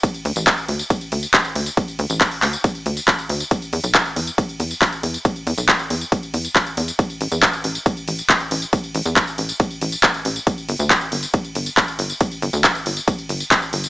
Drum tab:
RD |x---x---x---x---|x---x---x---x---|x---x---x---x---|x---x---x---x---|
HH |xxoxxxoxxxoxxxox|xxoxxooxxxoxxxox|xxoxxxoxxxoxxxox|xxoxxxoxxxoxxxox|
TB |xx-xxx-xxx-xxx-x|xx-x-x-xxx-xxx-x|xx-x-x-xxx-xxx-x|xx-x-x-xxx-xxx-x|
CP |----x-------x---|----x-x-----x---|----x-------x---|----x-------x---|
BD |o---o---o---o---|o---o---o---o---|o---o---o---o---|o---o---o---o---|

RD |x---x---x---x---|x---x---x---x---|x---x---x---x---|x---x---x---x---|
HH |xxoxxxoxxxoxxxox|xxoxxxoxxxox-xox|xxoxxxoxxxoxxxox|xxoxxxoxxxoxxxox|
TB |xx-x-x-xxx-xxx-x|xx-xxx-xxx-x-x-x|xx-xxx-xxx-xxx-x|xx-xxx-xxx-xxx-x|
CP |----x-------x---|----x-------x---|----x-------x---|----x-------x---|
BD |o---o---o---o---|o---o---o---o---|o---o---o---o---|o---o---o---o---|